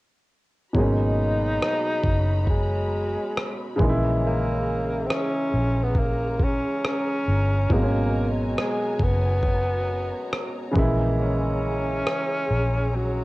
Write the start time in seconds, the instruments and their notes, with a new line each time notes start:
0.73 fingered electric bass G#1, upright piano B2 F#3 G#3, string section F#4 C#5 A#5 B5, kick
0.77 upright piano A#3 C#4, tenor saxophone D#4
1.62 cross-stick
2.04 fingered electric bass F#1, kick
2.47 tenor saxophone G#3, kick
3.37 cross-stick
3.76 fingered electric bass A#1, upright piano C#3 E3 G#3, string section G#4 A#5, kick
3.81 upright piano A#3 D#4
3.89 upright piano E4
4.27 tenor saxophone A#3
5.06 tenor saxophone C4, cross-stick
5.13 tenor saxophone C#4
5.54 fingered electric bass A#1
5.83 tenor saxophone B3
5.95 kick
5.99 tenor saxophone A#3
6.39 tenor saxophone C#4, kick
6.84 tenor saxophone C#4, cross-stick
7.28 fingered electric bass G1
7.70 fingered electric bass G#1, upright piano B2 F#3 G#3, tenor saxophone A#3, string section F#4 C#5 G#5, kick
7.75 upright piano C4 A#4
7.83 upright piano C#4
8.58 tenor saxophone G#3, cross-stick
9.00 fingered electric bass F#1, tenor saxophone B3, kick
9.43 kick
10.33 cross-stick
10.71 upright piano C#3 E3 G#3
10.75 fingered electric bass A#1, upright piano A#3 E4, string section G#4, kick
11.20 tenor saxophone C#4
12.07 cross-stick
12.50 fingered electric bass A#1
12.95 tenor saxophone F#3